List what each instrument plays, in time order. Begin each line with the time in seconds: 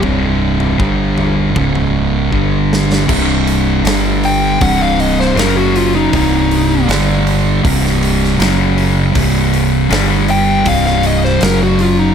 0.02 picked electric bass C1, distorted electric guitar C2 G2 C3, kick, floor tom
0.60 floor tom
0.78 picked electric bass G1, distorted electric guitar G2 D3 G3, kick
1.18 floor tom
1.54 picked electric bass C#1, distorted electric guitar C#2 G#2 C#3, kick, mid tom
1.75 floor tom
2.32 picked electric bass G1, distorted electric guitar G2 D3 G3, kick
2.73 snare
2.92 snare
3.07 picked electric bass C1, distorted electric guitar C2 G2 C3, kick, crash
3.47 open hi-hat
3.84 picked electric bass G1, distorted electric guitar G2 D3 G3, snare, open hi-hat
4.23 lead electric guitar G5, open hi-hat
4.60 picked electric bass C1, distorted electric guitar C2 G2 C3, lead electric guitar F#5, kick, open hi-hat
4.83 lead electric guitar F5
5.00 lead electric guitar D#5, open hi-hat
5.20 lead electric guitar C5, snare
5.35 picked electric bass F#1, distorted electric guitar F#2 C#3 F#3, open hi-hat
5.39 lead electric guitar A#4, snare
5.57 lead electric guitar F#4
5.76 lead electric guitar F4, open hi-hat
5.95 lead electric guitar D#4
6.12 picked electric bass C1, distorted electric guitar C2 G2 C3, lead electric guitar D#4, kick, open hi-hat
6.51 open hi-hat
6.87 picked electric bass G1, distorted electric guitar G2 D3 G3, snare, open hi-hat
7.27 open hi-hat
7.63 picked electric bass C1, distorted electric guitar C2 G2 C3, kick, open hi-hat
7.86 snare
8.03 open hi-hat
8.24 snare
8.38 picked electric bass F#1, distorted electric guitar F#2 C#3 F#3, snare, open hi-hat
8.78 open hi-hat
9.14 picked electric bass C1, distorted electric guitar C2 G2 C3, kick, open hi-hat
9.54 open hi-hat
9.89 picked electric bass G1, distorted electric guitar G2 D3 G3, snare, open hi-hat
10.28 lead electric guitar G5, open hi-hat
10.65 picked electric bass C1, distorted electric guitar C2 G2 C3, lead electric guitar F5, kick, open hi-hat
10.86 lead electric guitar F5, snare
11.03 lead electric guitar D#5, open hi-hat
11.24 lead electric guitar C5, snare
11.40 picked electric bass F#1, distorted electric guitar F#2 C#3 F#3, lead electric guitar A#4, snare, open hi-hat
11.63 lead electric guitar F#4
11.79 lead electric guitar F4, open hi-hat
11.99 lead electric guitar D#4